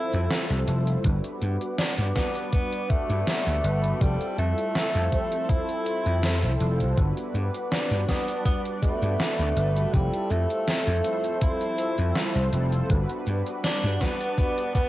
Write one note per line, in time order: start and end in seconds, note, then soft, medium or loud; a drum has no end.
0.00 0.64 F3 medium
0.00 0.67 G3 medium
0.00 0.67 C4 medium
0.00 0.64 E4 loud
0.00 0.68 E4 medium
0.00 0.68 F4 medium
0.00 0.68 A4 medium
0.00 1.02 A4 medium
0.00 0.64 C5 loud
0.00 1.02 E6 medium
0.13 0.26 F2 medium
0.13 closed hi-hat soft
0.31 snare loud
0.31 closed hi-hat medium
0.50 0.63 C2 medium
0.50 closed hi-hat soft
0.67 0.95 F1 loud
0.67 1.00 G3 medium
0.67 1.00 C4 medium
0.67 1.00 E4 medium
0.67 1.01 F4 medium
0.67 1.01 A4 loud
0.67 closed hi-hat medium
0.87 closed hi-hat soft
1.03 1.19 G1 loud
1.03 2.11 G3 medium
1.03 2.11 B3 medium
1.03 2.12 D4 medium
1.03 2.12 F#4 medium
1.03 3.98 B4 medium
1.03 2.12 B4 medium
1.03 3.98 F#5 medium
1.03 3.98 D6 medium
1.03 kick loud
1.03 closed hi-hat medium
1.24 closed hi-hat soft
1.42 1.56 G2 medium
1.42 closed hi-hat soft
1.61 closed hi-hat soft
1.78 1.95 D4 medium
1.78 snare loud
1.78 closed hi-hat medium
1.98 2.11 G2 loud
1.98 closed hi-hat soft
2.15 3.59 G3 medium
2.15 3.60 B3 medium
2.15 2.50 B3 medium
2.15 3.60 D4 medium
2.15 3.60 F#4 medium
2.15 3.61 D5 loud
2.15 kick medium
2.15 snare medium
2.15 closed hi-hat medium
2.35 closed hi-hat soft
2.53 2.91 B3 loud
2.53 kick loud
2.53 closed hi-hat medium
2.72 closed hi-hat soft
2.90 4.02 A3 loud
2.90 kick loud
2.90 closed hi-hat medium
3.10 3.22 G2 medium
3.10 closed hi-hat soft
3.27 snare loud
3.27 closed hi-hat medium
3.47 3.59 D2 medium
3.47 closed hi-hat soft
3.63 3.92 G1 loud
3.63 3.96 G3 medium
3.63 3.97 B3 medium
3.63 3.97 D4 medium
3.63 3.97 F#4 medium
3.63 3.97 B4 loud
3.63 closed hi-hat medium
3.84 closed hi-hat soft
4.00 4.15 F1 loud
4.00 5.07 G3 medium
4.00 4.37 G3 loud
4.00 5.08 C4 medium
4.00 5.08 E4 medium
4.00 5.08 F4 medium
4.00 6.94 A4 medium
4.00 5.09 A4 medium
4.00 6.94 E6 medium
4.00 kick loud
4.00 closed hi-hat medium
4.21 closed hi-hat soft
4.38 4.52 F2 medium
4.38 5.51 A3 loud
4.38 closed hi-hat soft
4.58 closed hi-hat soft
4.75 snare loud
4.75 closed hi-hat medium
4.95 5.08 F2 loud
4.95 closed hi-hat soft
5.11 6.56 F3 medium
5.11 6.55 G3 medium
5.11 6.56 C4 medium
5.11 6.56 E4 medium
5.11 6.57 C5 loud
5.11 kick medium
5.11 closed hi-hat medium
5.32 closed hi-hat soft
5.49 6.60 E4 loud
5.49 kick loud
5.49 closed hi-hat medium
5.69 closed hi-hat soft
5.86 closed hi-hat medium
6.06 6.45 F2 medium
6.06 closed hi-hat soft
6.23 snare loud
6.23 closed hi-hat medium
6.43 6.56 C2 medium
6.43 closed hi-hat soft
6.60 6.82 F1 medium
6.60 6.93 G3 medium
6.60 6.93 C4 medium
6.60 6.93 E4 medium
6.60 6.93 F4 medium
6.60 6.94 A4 loud
6.60 closed hi-hat medium
6.80 6.93 C2 medium
6.80 closed hi-hat soft
6.96 7.12 G1 loud
6.96 8.04 G3 medium
6.96 8.04 B3 medium
6.96 8.04 D4 medium
6.96 8.05 F#4 medium
6.96 9.91 B4 medium
6.96 8.05 B4 medium
6.96 9.91 F#5 medium
6.96 9.91 D6 medium
6.96 kick loud
6.96 closed hi-hat medium
6.96 cabasa soft
7.17 closed hi-hat soft
7.34 7.49 G2 medium
7.34 closed hi-hat soft
7.34 cabasa medium
7.54 closed hi-hat soft
7.54 cabasa soft
7.71 8.10 D4 loud
7.71 snare loud
7.71 closed hi-hat medium
7.71 cabasa soft
7.91 8.04 G2 loud
7.91 closed hi-hat soft
8.07 9.52 G3 medium
8.07 9.52 B3 medium
8.07 8.45 B3 medium
8.07 9.52 D4 medium
8.07 9.53 F#4 medium
8.07 9.53 D5 loud
8.07 kick medium
8.07 snare medium
8.07 closed hi-hat medium
8.07 cabasa medium
8.28 closed hi-hat soft
8.28 cabasa soft
8.45 8.61 B3 medium
8.45 kick loud
8.45 closed hi-hat medium
8.45 cabasa soft
8.65 closed hi-hat soft
8.83 9.95 A3 loud
8.83 kick loud
8.83 closed hi-hat medium
8.83 cabasa medium
9.02 9.15 G2 medium
9.02 closed hi-hat soft
9.02 cabasa soft
9.20 snare loud
9.20 closed hi-hat medium
9.20 cabasa soft
9.39 9.52 D2 medium
9.39 closed hi-hat soft
9.56 9.84 G1 loud
9.56 9.89 G3 medium
9.56 9.89 B3 medium
9.56 9.89 D4 medium
9.56 9.90 F#4 medium
9.56 9.90 B4 loud
9.56 closed hi-hat medium
9.56 cabasa medium
9.76 closed hi-hat soft
9.76 cabasa soft
9.92 10.08 F1 loud
9.92 11.00 G3 medium
9.92 10.32 G3 loud
9.92 11.00 C4 medium
9.92 11.01 E4 medium
9.92 11.01 F4 medium
9.92 12.87 A4 medium
9.92 11.01 A4 medium
9.92 12.87 E6 medium
9.92 kick loud
9.92 closed hi-hat medium
9.92 cabasa soft
10.13 closed hi-hat soft
10.30 10.45 F2 medium
10.30 11.41 A3 loud
10.30 closed hi-hat soft
10.30 cabasa medium
10.50 closed hi-hat soft
10.50 cabasa soft
10.68 snare loud
10.68 closed hi-hat medium
10.68 cabasa soft
10.87 11.00 F2 loud
10.87 closed hi-hat soft
11.03 12.49 F3 medium
11.03 12.48 G3 loud
11.03 12.48 C4 medium
11.03 12.49 E4 medium
11.03 12.49 C5 loud
11.03 closed hi-hat medium
11.03 cabasa medium
11.24 closed hi-hat soft
11.24 cabasa soft
11.41 12.49 E4 loud
11.41 kick loud
11.41 closed hi-hat medium
11.41 cabasa soft
11.61 closed hi-hat soft
11.78 closed hi-hat medium
11.78 cabasa medium
11.98 12.11 F2 medium
11.98 closed hi-hat soft
11.98 cabasa soft
12.15 snare loud
12.15 closed hi-hat medium
12.15 cabasa soft
12.35 12.48 C2 medium
12.35 closed hi-hat soft
12.52 12.80 F1 loud
12.52 12.85 G3 medium
12.52 12.85 C4 medium
12.52 12.86 E4 medium
12.52 12.86 F4 medium
12.52 12.86 A4 loud
12.52 closed hi-hat medium
12.52 cabasa medium
12.72 closed hi-hat soft
12.72 cabasa soft
12.88 13.04 G1 loud
12.88 13.96 G3 medium
12.88 13.96 B3 medium
12.88 13.97 D4 medium
12.88 13.97 F#4 medium
12.88 14.89 B4 medium
12.88 13.98 B4 medium
12.88 14.89 F#5 medium
12.88 14.89 D6 medium
12.88 kick loud
12.88 closed hi-hat medium
12.88 cabasa soft
13.09 closed hi-hat soft
13.27 13.41 G2 medium
13.27 closed hi-hat soft
13.27 cabasa medium
13.47 closed hi-hat soft
13.47 cabasa soft
13.64 14.02 D4 loud
13.64 snare loud
13.64 closed hi-hat medium
13.64 cabasa soft
13.84 13.96 G2 loud
13.84 closed hi-hat soft
14.00 14.89 G3 medium
14.00 14.89 B3 medium
14.00 14.74 B3 loud
14.00 14.89 D4 medium
14.00 14.89 F#4 medium
14.00 14.89 D5 loud
14.00 kick medium
14.00 snare medium
14.00 closed hi-hat medium
14.00 cabasa medium
14.21 closed hi-hat soft
14.21 cabasa soft
14.38 kick loud
14.38 closed hi-hat medium
14.38 cabasa soft
14.58 closed hi-hat soft
14.75 14.89 B3 loud
14.75 kick medium
14.75 closed hi-hat medium
14.75 cabasa medium